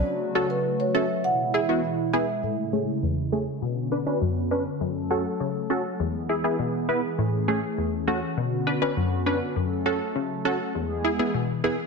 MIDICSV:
0, 0, Header, 1, 4, 480
1, 0, Start_track
1, 0, Key_signature, 3, "minor"
1, 0, Tempo, 594059
1, 44, Time_signature, 4, 2, 24, 8
1, 9589, End_track
2, 0, Start_track
2, 0, Title_t, "Marimba"
2, 0, Program_c, 0, 12
2, 405, Note_on_c, 0, 71, 75
2, 500, Note_off_c, 0, 71, 0
2, 645, Note_on_c, 0, 73, 77
2, 740, Note_off_c, 0, 73, 0
2, 765, Note_on_c, 0, 76, 79
2, 860, Note_off_c, 0, 76, 0
2, 1005, Note_on_c, 0, 78, 82
2, 1100, Note_off_c, 0, 78, 0
2, 1246, Note_on_c, 0, 76, 76
2, 1340, Note_off_c, 0, 76, 0
2, 1725, Note_on_c, 0, 76, 77
2, 1820, Note_off_c, 0, 76, 0
2, 9589, End_track
3, 0, Start_track
3, 0, Title_t, "Synth stab"
3, 0, Program_c, 1, 62
3, 284, Note_on_c, 1, 61, 79
3, 284, Note_on_c, 1, 66, 68
3, 284, Note_on_c, 1, 69, 84
3, 380, Note_off_c, 1, 61, 0
3, 380, Note_off_c, 1, 66, 0
3, 380, Note_off_c, 1, 69, 0
3, 764, Note_on_c, 1, 61, 73
3, 764, Note_on_c, 1, 66, 67
3, 764, Note_on_c, 1, 69, 87
3, 860, Note_off_c, 1, 61, 0
3, 860, Note_off_c, 1, 66, 0
3, 860, Note_off_c, 1, 69, 0
3, 1244, Note_on_c, 1, 64, 76
3, 1245, Note_on_c, 1, 68, 85
3, 1292, Note_off_c, 1, 64, 0
3, 1293, Note_off_c, 1, 68, 0
3, 1365, Note_on_c, 1, 59, 75
3, 1365, Note_on_c, 1, 64, 65
3, 1365, Note_on_c, 1, 66, 78
3, 1461, Note_off_c, 1, 59, 0
3, 1461, Note_off_c, 1, 64, 0
3, 1461, Note_off_c, 1, 66, 0
3, 1724, Note_on_c, 1, 59, 77
3, 1725, Note_on_c, 1, 64, 69
3, 1725, Note_on_c, 1, 68, 82
3, 1820, Note_off_c, 1, 59, 0
3, 1821, Note_off_c, 1, 64, 0
3, 1821, Note_off_c, 1, 68, 0
3, 1965, Note_on_c, 1, 45, 87
3, 2205, Note_on_c, 1, 57, 86
3, 2205, Note_on_c, 1, 61, 77
3, 2205, Note_on_c, 1, 68, 94
3, 2301, Note_off_c, 1, 57, 0
3, 2301, Note_off_c, 1, 61, 0
3, 2301, Note_off_c, 1, 68, 0
3, 2322, Note_off_c, 1, 45, 0
3, 2445, Note_on_c, 1, 40, 88
3, 2685, Note_on_c, 1, 57, 87
3, 2685, Note_on_c, 1, 61, 78
3, 2685, Note_on_c, 1, 68, 95
3, 2781, Note_off_c, 1, 57, 0
3, 2781, Note_off_c, 1, 61, 0
3, 2781, Note_off_c, 1, 68, 0
3, 2802, Note_off_c, 1, 40, 0
3, 2924, Note_on_c, 1, 47, 87
3, 3164, Note_on_c, 1, 62, 89
3, 3165, Note_on_c, 1, 71, 99
3, 3212, Note_off_c, 1, 62, 0
3, 3213, Note_off_c, 1, 71, 0
3, 3282, Note_off_c, 1, 47, 0
3, 3284, Note_on_c, 1, 61, 80
3, 3284, Note_on_c, 1, 62, 77
3, 3285, Note_on_c, 1, 71, 89
3, 3380, Note_off_c, 1, 61, 0
3, 3380, Note_off_c, 1, 62, 0
3, 3381, Note_off_c, 1, 71, 0
3, 3405, Note_on_c, 1, 42, 83
3, 3644, Note_on_c, 1, 61, 83
3, 3645, Note_on_c, 1, 62, 79
3, 3645, Note_on_c, 1, 71, 93
3, 3740, Note_off_c, 1, 61, 0
3, 3741, Note_off_c, 1, 62, 0
3, 3741, Note_off_c, 1, 71, 0
3, 3762, Note_off_c, 1, 42, 0
3, 3885, Note_on_c, 1, 42, 86
3, 4124, Note_on_c, 1, 61, 85
3, 4124, Note_on_c, 1, 66, 79
3, 4125, Note_on_c, 1, 69, 94
3, 4220, Note_off_c, 1, 61, 0
3, 4220, Note_off_c, 1, 66, 0
3, 4221, Note_off_c, 1, 69, 0
3, 4242, Note_off_c, 1, 42, 0
3, 4364, Note_on_c, 1, 49, 86
3, 4605, Note_on_c, 1, 61, 83
3, 4605, Note_on_c, 1, 66, 78
3, 4605, Note_on_c, 1, 69, 98
3, 4701, Note_off_c, 1, 61, 0
3, 4701, Note_off_c, 1, 66, 0
3, 4701, Note_off_c, 1, 69, 0
3, 4722, Note_off_c, 1, 49, 0
3, 4845, Note_on_c, 1, 40, 86
3, 5085, Note_on_c, 1, 64, 89
3, 5085, Note_on_c, 1, 68, 97
3, 5133, Note_off_c, 1, 64, 0
3, 5133, Note_off_c, 1, 68, 0
3, 5202, Note_off_c, 1, 40, 0
3, 5204, Note_on_c, 1, 59, 81
3, 5204, Note_on_c, 1, 64, 74
3, 5205, Note_on_c, 1, 68, 89
3, 5300, Note_off_c, 1, 59, 0
3, 5300, Note_off_c, 1, 64, 0
3, 5301, Note_off_c, 1, 68, 0
3, 5324, Note_on_c, 1, 47, 86
3, 5564, Note_on_c, 1, 59, 85
3, 5564, Note_on_c, 1, 64, 78
3, 5565, Note_on_c, 1, 71, 99
3, 5660, Note_off_c, 1, 59, 0
3, 5660, Note_off_c, 1, 64, 0
3, 5661, Note_off_c, 1, 71, 0
3, 5682, Note_off_c, 1, 47, 0
3, 5804, Note_on_c, 1, 45, 87
3, 6044, Note_on_c, 1, 57, 87
3, 6044, Note_on_c, 1, 61, 80
3, 6044, Note_on_c, 1, 68, 94
3, 6140, Note_off_c, 1, 57, 0
3, 6140, Note_off_c, 1, 61, 0
3, 6140, Note_off_c, 1, 68, 0
3, 6161, Note_off_c, 1, 45, 0
3, 6284, Note_on_c, 1, 40, 81
3, 6524, Note_on_c, 1, 57, 89
3, 6524, Note_on_c, 1, 66, 99
3, 6525, Note_on_c, 1, 61, 82
3, 6620, Note_off_c, 1, 57, 0
3, 6620, Note_off_c, 1, 66, 0
3, 6621, Note_off_c, 1, 61, 0
3, 6642, Note_off_c, 1, 40, 0
3, 6764, Note_on_c, 1, 47, 87
3, 7004, Note_on_c, 1, 62, 90
3, 7004, Note_on_c, 1, 71, 101
3, 7052, Note_off_c, 1, 62, 0
3, 7052, Note_off_c, 1, 71, 0
3, 7121, Note_off_c, 1, 47, 0
3, 7124, Note_on_c, 1, 61, 79
3, 7124, Note_on_c, 1, 62, 73
3, 7124, Note_on_c, 1, 71, 96
3, 7220, Note_off_c, 1, 61, 0
3, 7220, Note_off_c, 1, 62, 0
3, 7220, Note_off_c, 1, 71, 0
3, 7244, Note_on_c, 1, 42, 89
3, 7484, Note_on_c, 1, 61, 87
3, 7484, Note_on_c, 1, 62, 77
3, 7485, Note_on_c, 1, 71, 97
3, 7580, Note_off_c, 1, 61, 0
3, 7580, Note_off_c, 1, 62, 0
3, 7581, Note_off_c, 1, 71, 0
3, 7602, Note_off_c, 1, 42, 0
3, 7725, Note_on_c, 1, 42, 88
3, 7964, Note_on_c, 1, 61, 82
3, 7965, Note_on_c, 1, 66, 79
3, 7965, Note_on_c, 1, 69, 94
3, 8060, Note_off_c, 1, 61, 0
3, 8061, Note_off_c, 1, 66, 0
3, 8061, Note_off_c, 1, 69, 0
3, 8082, Note_off_c, 1, 42, 0
3, 8204, Note_on_c, 1, 49, 83
3, 8444, Note_on_c, 1, 61, 88
3, 8444, Note_on_c, 1, 66, 78
3, 8445, Note_on_c, 1, 69, 94
3, 8540, Note_off_c, 1, 61, 0
3, 8540, Note_off_c, 1, 66, 0
3, 8541, Note_off_c, 1, 69, 0
3, 8562, Note_off_c, 1, 49, 0
3, 8684, Note_on_c, 1, 40, 87
3, 8924, Note_on_c, 1, 64, 87
3, 8924, Note_on_c, 1, 68, 98
3, 8972, Note_off_c, 1, 64, 0
3, 8972, Note_off_c, 1, 68, 0
3, 9041, Note_off_c, 1, 40, 0
3, 9044, Note_on_c, 1, 59, 83
3, 9044, Note_on_c, 1, 64, 76
3, 9044, Note_on_c, 1, 68, 93
3, 9140, Note_off_c, 1, 59, 0
3, 9140, Note_off_c, 1, 64, 0
3, 9140, Note_off_c, 1, 68, 0
3, 9164, Note_on_c, 1, 47, 88
3, 9404, Note_on_c, 1, 59, 85
3, 9404, Note_on_c, 1, 64, 81
3, 9404, Note_on_c, 1, 68, 99
3, 9500, Note_off_c, 1, 59, 0
3, 9500, Note_off_c, 1, 64, 0
3, 9500, Note_off_c, 1, 68, 0
3, 9522, Note_off_c, 1, 47, 0
3, 9589, End_track
4, 0, Start_track
4, 0, Title_t, "Analog synth pad"
4, 0, Program_c, 2, 89
4, 0, Note_on_c, 2, 54, 75
4, 45, Note_on_c, 2, 49, 77
4, 45, Note_on_c, 2, 57, 71
4, 45, Note_on_c, 2, 66, 87
4, 986, Note_off_c, 2, 54, 0
4, 995, Note_off_c, 2, 49, 0
4, 995, Note_off_c, 2, 57, 0
4, 995, Note_off_c, 2, 66, 0
4, 1004, Note_on_c, 2, 47, 83
4, 1004, Note_on_c, 2, 64, 91
4, 1005, Note_on_c, 2, 52, 73
4, 1005, Note_on_c, 2, 56, 70
4, 1955, Note_off_c, 2, 47, 0
4, 1955, Note_off_c, 2, 52, 0
4, 1955, Note_off_c, 2, 56, 0
4, 1955, Note_off_c, 2, 64, 0
4, 1964, Note_on_c, 2, 49, 74
4, 1964, Note_on_c, 2, 56, 72
4, 1964, Note_on_c, 2, 57, 70
4, 1964, Note_on_c, 2, 64, 86
4, 2915, Note_off_c, 2, 49, 0
4, 2915, Note_off_c, 2, 56, 0
4, 2915, Note_off_c, 2, 57, 0
4, 2915, Note_off_c, 2, 64, 0
4, 2924, Note_on_c, 2, 50, 78
4, 2924, Note_on_c, 2, 59, 73
4, 2924, Note_on_c, 2, 61, 71
4, 2924, Note_on_c, 2, 66, 83
4, 3875, Note_off_c, 2, 50, 0
4, 3875, Note_off_c, 2, 59, 0
4, 3875, Note_off_c, 2, 66, 0
4, 3884, Note_on_c, 2, 54, 77
4, 3884, Note_on_c, 2, 57, 71
4, 3884, Note_on_c, 2, 69, 88
4, 4825, Note_off_c, 2, 61, 0
4, 4835, Note_off_c, 2, 54, 0
4, 4835, Note_off_c, 2, 57, 0
4, 4835, Note_off_c, 2, 69, 0
4, 4844, Note_on_c, 2, 52, 81
4, 4844, Note_on_c, 2, 59, 72
4, 4845, Note_on_c, 2, 56, 72
4, 4845, Note_on_c, 2, 68, 89
4, 5795, Note_off_c, 2, 56, 0
4, 5795, Note_off_c, 2, 59, 0
4, 5805, Note_on_c, 2, 57, 71
4, 5805, Note_on_c, 2, 61, 77
4, 6745, Note_off_c, 2, 52, 0
4, 6745, Note_off_c, 2, 68, 0
4, 6755, Note_off_c, 2, 57, 0
4, 6764, Note_on_c, 2, 50, 76
4, 6764, Note_on_c, 2, 59, 69
4, 6764, Note_on_c, 2, 66, 82
4, 7715, Note_off_c, 2, 50, 0
4, 7715, Note_off_c, 2, 59, 0
4, 7715, Note_off_c, 2, 66, 0
4, 7725, Note_on_c, 2, 54, 76
4, 7725, Note_on_c, 2, 57, 72
4, 7725, Note_on_c, 2, 69, 84
4, 8656, Note_off_c, 2, 61, 0
4, 8675, Note_off_c, 2, 54, 0
4, 8675, Note_off_c, 2, 57, 0
4, 8675, Note_off_c, 2, 69, 0
4, 8684, Note_on_c, 2, 52, 79
4, 8684, Note_on_c, 2, 68, 83
4, 8685, Note_on_c, 2, 56, 70
4, 8685, Note_on_c, 2, 59, 72
4, 9589, Note_off_c, 2, 52, 0
4, 9589, Note_off_c, 2, 56, 0
4, 9589, Note_off_c, 2, 59, 0
4, 9589, Note_off_c, 2, 68, 0
4, 9589, End_track
0, 0, End_of_file